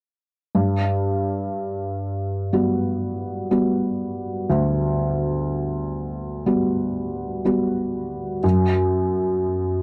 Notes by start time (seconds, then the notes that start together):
0.55 G2
2.53 G3 B3 F#4
3.51 G3 B3 F#4
4.50 D2
6.46 G3 B3 F#4
7.45 G3 B3 F#4
8.44 F#2